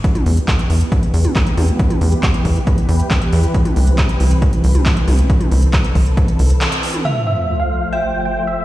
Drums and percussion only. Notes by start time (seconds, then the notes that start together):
0.04 kick, closed hi-hat
0.15 closed hi-hat, mid tom
0.26 open hi-hat
0.37 closed hi-hat
0.48 kick, clap, closed hi-hat
0.59 closed hi-hat
0.70 open hi-hat
0.81 closed hi-hat
0.92 kick, closed hi-hat
1.03 closed hi-hat
1.14 open hi-hat
1.25 closed hi-hat, mid tom
1.36 kick, clap, closed hi-hat
1.47 closed hi-hat
1.58 open hi-hat, mid tom
1.68 closed hi-hat
1.79 kick, closed hi-hat
1.90 closed hi-hat, mid tom
2.01 open hi-hat
2.12 closed hi-hat
2.23 kick, clap, closed hi-hat
2.34 closed hi-hat
2.45 kick, open hi-hat
2.56 closed hi-hat
2.67 kick, closed hi-hat
2.78 closed hi-hat
2.89 open hi-hat
3.00 closed hi-hat
3.11 kick, clap, closed hi-hat
3.22 closed hi-hat
3.33 open hi-hat
3.43 closed hi-hat
3.54 kick, closed hi-hat
3.65 closed hi-hat, mid tom
3.76 open hi-hat
3.87 closed hi-hat
3.98 kick, clap, closed hi-hat
4.09 closed hi-hat
4.20 open hi-hat
4.31 closed hi-hat
4.42 kick, closed hi-hat
4.53 closed hi-hat
4.64 open hi-hat
4.75 closed hi-hat, mid tom
4.86 kick, clap, closed hi-hat
4.97 closed hi-hat
5.08 open hi-hat, mid tom
5.19 closed hi-hat
5.30 kick, closed hi-hat
5.41 closed hi-hat, mid tom
5.52 open hi-hat
5.62 closed hi-hat
5.73 kick, clap, closed hi-hat
5.84 closed hi-hat
5.95 kick, open hi-hat
6.06 closed hi-hat
6.17 kick, closed hi-hat
6.28 closed hi-hat
6.39 open hi-hat
6.50 closed hi-hat
6.61 clap, closed hi-hat
6.72 closed hi-hat
6.83 open hi-hat
6.94 closed hi-hat, mid tom